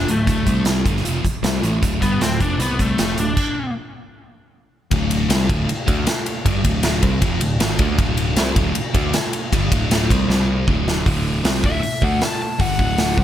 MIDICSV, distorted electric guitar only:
0, 0, Header, 1, 3, 480
1, 0, Start_track
1, 0, Tempo, 385109
1, 342, Time_signature, 4, 2, 24, 8
1, 16501, End_track
2, 0, Start_track
2, 0, Title_t, "Distorted electric guitar"
2, 0, Program_c, 0, 30
2, 103, Note_on_c, 0, 38, 58
2, 108, Note_on_c, 0, 45, 66
2, 295, Note_off_c, 0, 38, 0
2, 298, Note_off_c, 0, 45, 0
2, 328, Note_on_c, 0, 38, 86
2, 338, Note_on_c, 0, 45, 95
2, 347, Note_on_c, 0, 50, 99
2, 568, Note_off_c, 0, 38, 0
2, 572, Note_off_c, 0, 45, 0
2, 573, Note_on_c, 0, 48, 82
2, 577, Note_on_c, 0, 55, 94
2, 578, Note_off_c, 0, 50, 0
2, 584, Note_on_c, 0, 60, 95
2, 1049, Note_off_c, 0, 48, 0
2, 1054, Note_on_c, 0, 43, 82
2, 1055, Note_off_c, 0, 55, 0
2, 1059, Note_off_c, 0, 60, 0
2, 1062, Note_on_c, 0, 50, 90
2, 1071, Note_on_c, 0, 55, 94
2, 1285, Note_off_c, 0, 43, 0
2, 1287, Note_off_c, 0, 50, 0
2, 1290, Note_on_c, 0, 41, 84
2, 1292, Note_on_c, 0, 48, 83
2, 1297, Note_off_c, 0, 55, 0
2, 1302, Note_on_c, 0, 53, 94
2, 1523, Note_off_c, 0, 41, 0
2, 1534, Note_off_c, 0, 48, 0
2, 1538, Note_off_c, 0, 53, 0
2, 1775, Note_on_c, 0, 48, 88
2, 1789, Note_on_c, 0, 55, 92
2, 1794, Note_on_c, 0, 60, 99
2, 2016, Note_off_c, 0, 48, 0
2, 2023, Note_off_c, 0, 55, 0
2, 2023, Note_on_c, 0, 45, 89
2, 2026, Note_off_c, 0, 60, 0
2, 2032, Note_on_c, 0, 52, 83
2, 2038, Note_on_c, 0, 57, 87
2, 2247, Note_off_c, 0, 45, 0
2, 2256, Note_on_c, 0, 38, 81
2, 2257, Note_off_c, 0, 52, 0
2, 2262, Note_on_c, 0, 45, 97
2, 2268, Note_off_c, 0, 57, 0
2, 2273, Note_on_c, 0, 50, 91
2, 2489, Note_off_c, 0, 50, 0
2, 2495, Note_off_c, 0, 38, 0
2, 2499, Note_off_c, 0, 45, 0
2, 2500, Note_on_c, 0, 43, 88
2, 2504, Note_on_c, 0, 50, 87
2, 2512, Note_on_c, 0, 55, 94
2, 2740, Note_off_c, 0, 43, 0
2, 2742, Note_off_c, 0, 50, 0
2, 2746, Note_off_c, 0, 55, 0
2, 2756, Note_on_c, 0, 38, 58
2, 2760, Note_on_c, 0, 45, 66
2, 2948, Note_off_c, 0, 38, 0
2, 2950, Note_off_c, 0, 45, 0
2, 2987, Note_on_c, 0, 41, 89
2, 2996, Note_on_c, 0, 48, 97
2, 3005, Note_on_c, 0, 53, 95
2, 3213, Note_off_c, 0, 48, 0
2, 3223, Note_off_c, 0, 41, 0
2, 3228, Note_on_c, 0, 48, 84
2, 3233, Note_off_c, 0, 53, 0
2, 3238, Note_on_c, 0, 55, 90
2, 3248, Note_on_c, 0, 60, 87
2, 3699, Note_off_c, 0, 48, 0
2, 3709, Note_off_c, 0, 55, 0
2, 3711, Note_on_c, 0, 41, 80
2, 3714, Note_on_c, 0, 48, 86
2, 3716, Note_off_c, 0, 60, 0
2, 3724, Note_on_c, 0, 53, 90
2, 3948, Note_off_c, 0, 41, 0
2, 3949, Note_off_c, 0, 48, 0
2, 3955, Note_off_c, 0, 53, 0
2, 3965, Note_on_c, 0, 38, 58
2, 3970, Note_on_c, 0, 45, 72
2, 4154, Note_off_c, 0, 38, 0
2, 4157, Note_off_c, 0, 45, 0
2, 6119, Note_on_c, 0, 38, 93
2, 6131, Note_on_c, 0, 45, 106
2, 6134, Note_on_c, 0, 50, 96
2, 6593, Note_off_c, 0, 38, 0
2, 6599, Note_off_c, 0, 45, 0
2, 6600, Note_on_c, 0, 48, 88
2, 6601, Note_off_c, 0, 50, 0
2, 6604, Note_on_c, 0, 55, 95
2, 6613, Note_on_c, 0, 60, 103
2, 6832, Note_off_c, 0, 48, 0
2, 6836, Note_off_c, 0, 55, 0
2, 6837, Note_on_c, 0, 38, 95
2, 6840, Note_off_c, 0, 60, 0
2, 6849, Note_on_c, 0, 45, 94
2, 6854, Note_on_c, 0, 50, 96
2, 7058, Note_off_c, 0, 38, 0
2, 7078, Note_off_c, 0, 45, 0
2, 7081, Note_off_c, 0, 50, 0
2, 7314, Note_on_c, 0, 50, 96
2, 7320, Note_on_c, 0, 57, 98
2, 7327, Note_on_c, 0, 62, 106
2, 7550, Note_off_c, 0, 50, 0
2, 7553, Note_off_c, 0, 57, 0
2, 7557, Note_off_c, 0, 62, 0
2, 8039, Note_on_c, 0, 43, 102
2, 8045, Note_on_c, 0, 50, 95
2, 8053, Note_on_c, 0, 55, 111
2, 8263, Note_off_c, 0, 43, 0
2, 8268, Note_on_c, 0, 38, 85
2, 8271, Note_off_c, 0, 50, 0
2, 8278, Note_on_c, 0, 45, 105
2, 8279, Note_off_c, 0, 55, 0
2, 8286, Note_on_c, 0, 50, 108
2, 8745, Note_off_c, 0, 38, 0
2, 8750, Note_off_c, 0, 45, 0
2, 8754, Note_off_c, 0, 50, 0
2, 8754, Note_on_c, 0, 48, 92
2, 8760, Note_on_c, 0, 55, 110
2, 8766, Note_on_c, 0, 60, 109
2, 8971, Note_off_c, 0, 48, 0
2, 8981, Note_off_c, 0, 55, 0
2, 8983, Note_on_c, 0, 41, 95
2, 8986, Note_on_c, 0, 48, 99
2, 8988, Note_off_c, 0, 60, 0
2, 8993, Note_on_c, 0, 53, 97
2, 9222, Note_off_c, 0, 41, 0
2, 9224, Note_off_c, 0, 48, 0
2, 9227, Note_off_c, 0, 53, 0
2, 9231, Note_on_c, 0, 38, 65
2, 9233, Note_on_c, 0, 45, 73
2, 9425, Note_off_c, 0, 38, 0
2, 9426, Note_off_c, 0, 45, 0
2, 9470, Note_on_c, 0, 44, 91
2, 9475, Note_on_c, 0, 51, 102
2, 9480, Note_on_c, 0, 56, 103
2, 9703, Note_off_c, 0, 51, 0
2, 9705, Note_off_c, 0, 44, 0
2, 9708, Note_on_c, 0, 50, 90
2, 9710, Note_off_c, 0, 56, 0
2, 9718, Note_on_c, 0, 57, 103
2, 9723, Note_on_c, 0, 62, 108
2, 9944, Note_off_c, 0, 50, 0
2, 9949, Note_off_c, 0, 57, 0
2, 9950, Note_on_c, 0, 38, 103
2, 9951, Note_off_c, 0, 62, 0
2, 9962, Note_on_c, 0, 45, 100
2, 9962, Note_on_c, 0, 50, 104
2, 10420, Note_off_c, 0, 38, 0
2, 10425, Note_off_c, 0, 45, 0
2, 10425, Note_on_c, 0, 48, 102
2, 10429, Note_off_c, 0, 50, 0
2, 10430, Note_on_c, 0, 55, 97
2, 10441, Note_on_c, 0, 60, 100
2, 10661, Note_off_c, 0, 48, 0
2, 10663, Note_off_c, 0, 55, 0
2, 10669, Note_off_c, 0, 60, 0
2, 10676, Note_on_c, 0, 38, 92
2, 10685, Note_on_c, 0, 45, 101
2, 10688, Note_on_c, 0, 50, 112
2, 10899, Note_off_c, 0, 38, 0
2, 10910, Note_off_c, 0, 45, 0
2, 10912, Note_off_c, 0, 50, 0
2, 11143, Note_on_c, 0, 50, 90
2, 11151, Note_on_c, 0, 57, 91
2, 11160, Note_on_c, 0, 62, 96
2, 11379, Note_off_c, 0, 50, 0
2, 11383, Note_off_c, 0, 57, 0
2, 11387, Note_off_c, 0, 62, 0
2, 11871, Note_on_c, 0, 43, 92
2, 11877, Note_on_c, 0, 50, 99
2, 11881, Note_on_c, 0, 55, 112
2, 12102, Note_off_c, 0, 43, 0
2, 12104, Note_off_c, 0, 50, 0
2, 12107, Note_off_c, 0, 55, 0
2, 12112, Note_on_c, 0, 38, 91
2, 12120, Note_on_c, 0, 45, 98
2, 12125, Note_on_c, 0, 50, 96
2, 12578, Note_off_c, 0, 38, 0
2, 12583, Note_on_c, 0, 48, 85
2, 12585, Note_off_c, 0, 45, 0
2, 12588, Note_off_c, 0, 50, 0
2, 12595, Note_on_c, 0, 55, 101
2, 12598, Note_on_c, 0, 60, 96
2, 12811, Note_off_c, 0, 48, 0
2, 12818, Note_off_c, 0, 55, 0
2, 12824, Note_off_c, 0, 60, 0
2, 12826, Note_on_c, 0, 48, 80
2, 12833, Note_on_c, 0, 55, 86
2, 12840, Note_on_c, 0, 60, 96
2, 13296, Note_off_c, 0, 48, 0
2, 13301, Note_off_c, 0, 55, 0
2, 13301, Note_on_c, 0, 38, 86
2, 13304, Note_off_c, 0, 60, 0
2, 13308, Note_on_c, 0, 45, 89
2, 13317, Note_on_c, 0, 50, 102
2, 13757, Note_off_c, 0, 38, 0
2, 13764, Note_off_c, 0, 45, 0
2, 13771, Note_on_c, 0, 38, 89
2, 13773, Note_off_c, 0, 50, 0
2, 13779, Note_on_c, 0, 45, 100
2, 13788, Note_on_c, 0, 50, 95
2, 14250, Note_off_c, 0, 38, 0
2, 14252, Note_off_c, 0, 45, 0
2, 14256, Note_on_c, 0, 48, 80
2, 14257, Note_on_c, 0, 55, 90
2, 14258, Note_off_c, 0, 50, 0
2, 14268, Note_on_c, 0, 60, 98
2, 14486, Note_off_c, 0, 48, 0
2, 14490, Note_off_c, 0, 55, 0
2, 14491, Note_on_c, 0, 38, 85
2, 14495, Note_on_c, 0, 45, 93
2, 14498, Note_off_c, 0, 60, 0
2, 14504, Note_on_c, 0, 50, 91
2, 14730, Note_off_c, 0, 38, 0
2, 14731, Note_off_c, 0, 45, 0
2, 14736, Note_off_c, 0, 50, 0
2, 14986, Note_on_c, 0, 50, 81
2, 14992, Note_on_c, 0, 57, 96
2, 15000, Note_on_c, 0, 62, 98
2, 15217, Note_off_c, 0, 50, 0
2, 15220, Note_off_c, 0, 57, 0
2, 15224, Note_off_c, 0, 62, 0
2, 15690, Note_on_c, 0, 43, 94
2, 15700, Note_on_c, 0, 50, 101
2, 15706, Note_on_c, 0, 55, 97
2, 15929, Note_off_c, 0, 43, 0
2, 15934, Note_off_c, 0, 50, 0
2, 15937, Note_off_c, 0, 55, 0
2, 15937, Note_on_c, 0, 38, 86
2, 15944, Note_on_c, 0, 45, 102
2, 15949, Note_on_c, 0, 50, 93
2, 16404, Note_off_c, 0, 38, 0
2, 16407, Note_off_c, 0, 45, 0
2, 16409, Note_on_c, 0, 48, 96
2, 16412, Note_on_c, 0, 55, 97
2, 16417, Note_off_c, 0, 50, 0
2, 16422, Note_on_c, 0, 60, 99
2, 16501, Note_off_c, 0, 48, 0
2, 16501, Note_off_c, 0, 55, 0
2, 16501, Note_off_c, 0, 60, 0
2, 16501, End_track
3, 0, Start_track
3, 0, Title_t, "Muted distorted electric guitar strokes"
3, 1528, Note_on_c, 9, 29, 56
3, 1653, Note_off_c, 9, 29, 0
3, 7073, Note_on_c, 9, 29, 55
3, 7198, Note_off_c, 9, 29, 0
3, 10914, Note_on_c, 9, 29, 58
3, 11039, Note_off_c, 9, 29, 0
3, 14744, Note_on_c, 9, 29, 49
3, 14868, Note_off_c, 9, 29, 0
3, 16501, End_track
0, 0, End_of_file